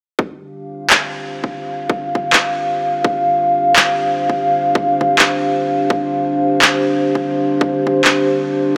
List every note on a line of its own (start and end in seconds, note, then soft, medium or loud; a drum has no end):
0.19 8.77 D4 medium
0.19 8.77 G4 medium
0.19 kick loud
0.45 8.77 F5 medium
0.62 8.77 C5 medium
0.90 clap loud
1.44 kick medium
1.90 kick loud
2.15 kick medium
2.33 clap loud
3.04 kick loud
3.76 clap loud
4.30 kick medium
4.75 kick loud
5.01 kick medium
5.19 clap loud
5.90 kick loud
6.62 clap loud
7.15 kick medium
7.61 kick medium
7.87 kick medium
8.04 clap loud